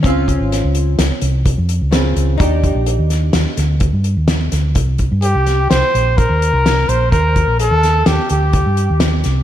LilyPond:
<<
  \new Staff \with { instrumentName = "Trumpet" } { \time 5/4 \key ees \lydian \tempo 4 = 127 r1 r4 | r1 r4 | r4 g'4 c''4 bes'4. c''8 | bes'4 a'4 g'8 g'2 r8 | }
  \new Staff \with { instrumentName = "Hollow-body jazz guitar" } { \time 5/4 \key ees \lydian <c' des' f'>1 <des c' f'>4 | <d' ees' g'>1~ <d' ees' g'>4 | r1 r4 | r1 r4 | }
  \new Staff \with { instrumentName = "Fingered electric bass" } { \clef bass \time 5/4 \key ees \lydian des,8. aes,,8 des,8. des,16 r16 c,8. f,8 des,8. des,8 | ees,8. bes,,8 ees,8. ees,16 r16 d,8. g,8 ees,8. d,8 | c,8. g,8 c,8. c,16 r16 bes,,8. ees,8 c,8. bes,,8 | ees,8. bes,,8 ees,8. ees,16 r16 d,8. g,8 ees,8. c,8 | }
  \new DrumStaff \with { instrumentName = "Drums" } \drummode { \time 5/4 <hh bd>8 <hh bd>8 <hh sn>8 hh8 <hh sn>8 hh8 <hh bd>8 hh8 <hh sn>8 hh8 | <hh bd>8 <hh bd>8 hh8 <hh sn>8 <hh sn>8 <hh sn>8 <hh bd>8 hh8 <hh sn>8 <hh sn>8 | <hh bd>8 <hh bd>8 hh8 <hh sn>8 <hh sn>8 hh8 <hh bd>8 hh8 <hh sn>8 hh8 | <hh bd>8 <hh bd>8 hh8 <hh sn>8 <hh sn>8 hh8 <hh bd>8 hh8 <hh sn>8 <hh sn>8 | }
>>